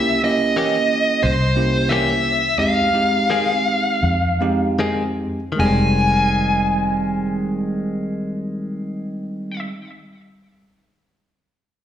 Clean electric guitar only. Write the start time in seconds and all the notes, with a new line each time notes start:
0.56 E3 A#3 C#4 G4
1.91 E3 A#3 C#4 G4
3.30 D#3 G#3 C4 G#4
4.79 D#3 G#3 C4 G#4
5.52 D#3
5.60 G#3
5.66 C4